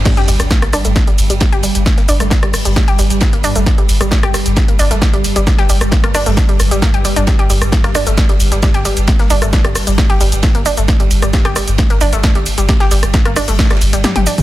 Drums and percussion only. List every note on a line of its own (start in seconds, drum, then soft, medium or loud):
0.05 kick loud
0.05 snare loud
0.05 closed hi-hat medium
0.05 ride medium
0.05 crash loud
0.05 shaker soft
0.17 closed hi-hat medium
0.28 open hi-hat loud
0.28 ride medium
0.28 shaker medium
0.40 cross-stick medium
0.40 closed hi-hat medium
0.40 shaker soft
0.51 kick loud
0.51 snare loud
0.51 closed hi-hat medium
0.51 ride medium
0.51 shaker soft
0.62 cross-stick medium
0.62 snare soft
0.62 closed hi-hat medium
0.73 cross-stick medium
0.73 open hi-hat loud
0.73 ride medium
0.73 shaker medium
0.85 closed hi-hat medium
0.85 shaker soft
0.96 kick loud
0.96 snare loud
0.96 closed hi-hat medium
0.96 ride medium
0.96 shaker soft
1.07 closed hi-hat medium
1.18 open hi-hat loud
1.18 ride medium
1.18 shaker medium
1.30 closed hi-hat medium
1.30 ride soft
1.30 shaker soft
1.40 kick loud
1.40 snare loud
1.40 closed hi-hat medium
1.40 ride medium
1.40 shaker soft
1.53 closed hi-hat medium
1.63 open hi-hat loud
1.63 ride medium
1.63 shaker medium
1.75 closed hi-hat medium
1.75 shaker soft
1.86 kick loud
1.86 snare loud
1.86 closed hi-hat medium
1.86 ride medium
1.86 shaker soft
1.97 snare medium
1.97 closed hi-hat medium
2.09 open hi-hat loud
2.09 ride medium
2.09 shaker medium
2.20 cross-stick medium
2.20 closed hi-hat medium
2.20 shaker soft
2.30 kick loud
2.30 snare loud
2.30 closed hi-hat medium
2.30 ride medium
2.30 shaker soft
2.43 cross-stick medium
2.43 closed hi-hat medium
2.54 cross-stick medium
2.54 open hi-hat loud
2.54 open hi-hat medium
2.54 shaker medium
2.65 closed hi-hat medium
2.65 shaker soft
2.76 kick loud
2.76 snare loud
2.76 closed hi-hat medium
2.76 ride medium
2.76 shaker soft
2.88 closed hi-hat medium
2.99 open hi-hat loud
2.99 ride medium
2.99 shaker medium
3.10 closed hi-hat medium
3.10 shaker soft
3.20 kick loud
3.20 snare loud
3.20 closed hi-hat medium
3.20 ride medium
3.20 shaker soft
3.33 closed hi-hat medium
3.44 open hi-hat loud
3.44 ride medium
3.44 shaker medium
3.56 closed hi-hat medium
3.56 shaker soft
3.66 kick loud
3.66 snare loud
3.66 closed hi-hat medium
3.66 ride medium
3.66 shaker soft
3.78 closed hi-hat medium
3.89 open hi-hat loud
3.89 ride medium
3.89 shaker medium
4.01 cross-stick medium
4.01 closed hi-hat medium
4.01 shaker soft
4.11 kick loud
4.11 snare loud
4.11 closed hi-hat medium
4.11 ride medium
4.11 shaker soft
4.23 cross-stick loud
4.23 snare soft
4.23 closed hi-hat medium
4.34 cross-stick loud
4.34 open hi-hat loud
4.34 ride medium
4.34 shaker medium
4.46 closed hi-hat medium
4.46 shaker soft
4.56 kick loud
4.56 snare loud
4.56 closed hi-hat medium
4.56 ride medium
4.56 shaker soft
4.68 closed hi-hat medium
4.79 open hi-hat loud
4.79 ride medium
4.79 shaker medium
4.91 closed hi-hat medium
4.91 ride soft
4.91 shaker soft
5.02 kick loud
5.02 snare loud
5.02 closed hi-hat medium
5.02 ride medium
5.02 shaker soft
5.13 closed hi-hat medium
5.24 open hi-hat loud
5.24 ride medium
5.24 shaker medium
5.36 closed hi-hat medium
5.36 shaker soft
5.47 kick loud
5.47 snare loud
5.47 closed hi-hat medium
5.47 ride medium
5.47 shaker soft
5.58 snare medium
5.58 closed hi-hat medium
5.69 open hi-hat loud
5.69 ride medium
5.69 shaker medium
5.81 cross-stick medium
5.81 closed hi-hat medium
5.81 shaker soft
5.91 kick loud
5.91 snare loud
5.91 closed hi-hat medium
5.91 ride medium
5.91 shaker soft
6.04 cross-stick loud
6.04 closed hi-hat medium
6.14 cross-stick loud
6.14 open hi-hat medium
6.14 open hi-hat loud
6.14 shaker medium
6.26 closed hi-hat medium
6.26 shaker soft
6.37 kick loud
6.37 snare loud
6.37 closed hi-hat medium
6.37 ride medium
6.37 shaker soft
6.49 closed hi-hat medium
6.60 cross-stick medium
6.60 open hi-hat loud
6.60 ride medium
6.60 shaker medium
6.71 closed hi-hat medium
6.71 shaker soft
6.82 kick loud
6.82 snare loud
6.82 closed hi-hat medium
6.82 ride medium
6.82 shaker soft
6.94 closed hi-hat medium
7.05 open hi-hat loud
7.05 ride medium
7.05 shaker medium
7.16 closed hi-hat medium
7.16 shaker soft
7.27 kick loud
7.27 snare loud
7.27 closed hi-hat medium
7.27 ride medium
7.27 shaker soft
7.39 closed hi-hat soft
7.50 open hi-hat loud
7.50 ride medium
7.50 shaker medium
7.62 cross-stick medium
7.62 closed hi-hat medium
7.62 shaker soft
7.72 kick loud
7.72 snare loud
7.72 closed hi-hat medium
7.72 ride loud
7.72 shaker soft
7.84 cross-stick loud
7.84 snare soft
7.84 closed hi-hat medium
7.94 cross-stick loud
7.94 open hi-hat loud
7.94 ride medium
7.94 shaker medium
8.07 closed hi-hat medium
8.07 shaker soft
8.18 kick loud
8.18 snare loud
8.18 closed hi-hat medium
8.18 ride medium
8.18 shaker soft
8.29 closed hi-hat medium
8.40 open hi-hat loud
8.40 ride medium
8.40 shaker medium
8.52 closed hi-hat medium
8.52 ride soft
8.52 shaker soft
8.63 kick loud
8.63 snare loud
8.63 closed hi-hat medium
8.63 ride medium
8.63 shaker soft
8.74 closed hi-hat soft
8.85 open hi-hat loud
8.85 ride medium
8.85 shaker medium
8.97 closed hi-hat medium
8.97 shaker soft
9.08 kick loud
9.08 snare loud
9.08 closed hi-hat medium
9.08 ride medium
9.08 shaker soft
9.19 snare medium
9.19 closed hi-hat medium
9.30 open hi-hat loud
9.30 ride medium
9.30 shaker medium
9.42 cross-stick medium
9.42 closed hi-hat medium
9.42 shaker soft
9.53 kick loud
9.53 snare loud
9.53 closed hi-hat medium
9.53 ride medium
9.53 shaker soft
9.64 cross-stick medium
9.64 closed hi-hat medium
9.75 cross-stick medium
9.75 open hi-hat medium
9.75 open hi-hat loud
9.75 shaker medium
9.87 closed hi-hat medium
9.87 shaker soft
9.98 kick loud
9.98 snare loud
9.98 closed hi-hat medium
9.98 ride medium
9.98 shaker soft
10.10 closed hi-hat medium
10.21 open hi-hat loud
10.21 ride medium
10.21 shaker medium
10.32 closed hi-hat medium
10.32 shaker soft
10.43 kick loud
10.43 snare loud
10.43 closed hi-hat medium
10.43 ride medium
10.43 shaker soft
10.55 closed hi-hat soft
10.65 open hi-hat loud
10.65 ride medium
10.65 shaker medium
10.77 closed hi-hat medium
10.77 shaker soft
10.88 kick loud
10.88 snare loud
10.88 closed hi-hat medium
10.88 ride medium
10.88 shaker soft
11.00 closed hi-hat medium
11.11 open hi-hat loud
11.11 ride medium
11.11 shaker medium
11.22 cross-stick medium
11.22 closed hi-hat medium
11.22 shaker soft
11.33 kick loud
11.33 snare loud
11.33 closed hi-hat medium
11.33 ride medium
11.33 shaker soft
11.44 cross-stick medium
11.44 snare soft
11.44 closed hi-hat medium
11.56 cross-stick medium
11.56 open hi-hat loud
11.56 ride medium
11.56 shaker medium
11.68 closed hi-hat medium
11.68 shaker soft
11.78 kick loud
11.78 snare loud
11.78 closed hi-hat medium
11.78 ride loud
11.78 shaker soft
11.90 closed hi-hat medium
12.01 open hi-hat loud
12.01 ride medium
12.01 shaker medium
12.12 closed hi-hat medium
12.12 ride soft
12.12 shaker soft
12.23 kick loud
12.23 snare loud
12.23 closed hi-hat medium
12.23 ride medium
12.23 shaker soft
12.35 closed hi-hat soft
12.46 open hi-hat loud
12.46 ride medium
12.46 shaker medium
12.58 closed hi-hat medium
12.58 shaker soft
12.69 kick loud
12.69 snare loud
12.69 closed hi-hat medium
12.69 ride loud
12.69 shaker soft
12.80 snare soft
12.80 closed hi-hat medium
12.91 open hi-hat loud
12.91 ride medium
12.91 shaker medium
13.03 cross-stick medium
13.03 closed hi-hat medium
13.03 shaker soft
13.13 kick loud
13.13 snare loud
13.13 closed hi-hat medium
13.13 ride medium
13.13 shaker soft
13.25 cross-stick medium
13.25 closed hi-hat medium
13.36 cross-stick medium
13.36 open hi-hat medium
13.36 open hi-hat loud
13.36 shaker medium
13.48 closed hi-hat medium
13.48 shaker soft
13.59 kick loud
13.59 snare loud
13.59 snare medium
13.59 closed hi-hat medium
13.59 ride medium
13.59 shaker soft
13.65 snare medium
13.65 ride medium
13.70 cross-stick medium
13.70 snare loud
13.70 closed hi-hat medium
13.70 ride medium
13.76 snare medium
13.76 ride medium
13.81 open hi-hat loud
13.81 ride medium
13.81 shaker medium
13.93 closed hi-hat medium
13.93 shaker soft
14.04 snare loud
14.04 closed hi-hat medium
14.04 high tom medium
14.04 ride medium
14.04 shaker soft
14.16 closed hi-hat medium
14.16 high tom medium
14.27 open hi-hat loud
14.27 ride medium
14.27 shaker medium
14.38 closed hi-hat medium
14.38 mid tom medium
14.38 shaker soft